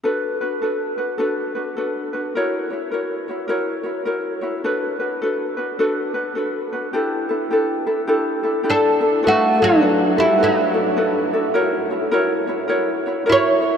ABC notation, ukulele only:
X:1
M:4/4
L:1/8
Q:"Swing" 1/4=104
K:D
V:1 name="Ukulele"
[DFAB] [DFB] [DFAB] [DFB] [DFAB] [DFB] [DFAB] [DFB] | [EF^Ac] [EFc] [EFAc] [EFc] [EFAc] [EFc] [EFAc] [EFc] | [DFAB] [DFB] [DFAB] [DFB] [DFAB] [DFB] [DFAB] [DFB] | [DEGA] [DEA] [DEGA] [DEA] [DEGA] [DEA] [DEGA] [DEA] |
[DFAB] [DFA] [DFAB] [DFA] [DFAB] [DFA] [DFAB] [DFA] | [EF^Ac] [EFc] [EFAc] [EFc] [EFAc] [EFc] [EFAc] [EFc] |]